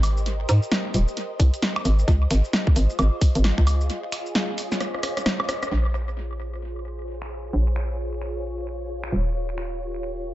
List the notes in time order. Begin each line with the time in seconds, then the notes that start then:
Already playing: G#1 G4 A#4 C5 D#5
0.03 open hi-hat, high woodblock, shaker
0.17 shaker
0.26 closed hi-hat, shaker
0.49 G#2, finger snap, open hi-hat, shaker
0.63 shaker
0.72 snare, closed hi-hat, shaker
0.94 D#1, finger snap, open hi-hat, shaker
1.08 shaker
1.17 closed hi-hat, shaker
1.40 C2, kick, open hi-hat, shaker
1.54 closed hi-hat, shaker
1.62 snare, closed hi-hat, shaker
1.76 finger snap, high woodblock
1.85 G#1, open hi-hat, shaker
1.99 shaker
2.08 C#2 F4 G#4 C5, kick, closed hi-hat, shaker
2.31 G#1, finger snap, open hi-hat, shaker
2.44 shaker
2.53 snare, closed hi-hat, shaker
2.67 kick
2.76 G#1, open hi-hat, shaker
2.90 shaker
2.99 G#1, closed hi-hat, high woodblock, shaker
3.21 kick, open hi-hat, shaker
3.35 G#1, closed hi-hat, shaker
3.44 snare, closed hi-hat, shaker
3.58 C#2, finger snap, kick
3.67 open hi-hat, high woodblock, shaker
3.81 shaker
3.90 C#5, closed hi-hat, shaker
4.12 finger snap, open hi-hat, shaker
4.26 shaker
4.35 snare, closed hi-hat, shaker
4.58 finger snap, open hi-hat, shaker
4.72 snare, shaker
4.81 cross-stick, closed hi-hat, shaker
4.94 cross-stick
5.03 cross-stick, open hi-hat, shaker
5.17 cross-stick, closed hi-hat, shaker
5.26 cross-stick, snare, closed hi-hat, shaker
5.40 cross-stick, high woodblock
5.49 cross-stick, open hi-hat, shaker
5.63 cross-stick, closed hi-hat, shaker
5.71 A#1 F4 G#4 C5 C#5
5.94 finger snap
7.22 finger snap
7.53 A#1
7.76 finger snap
8.22 finger snap
9.04 finger snap
9.12 D#1 G4 A#4
9.58 finger snap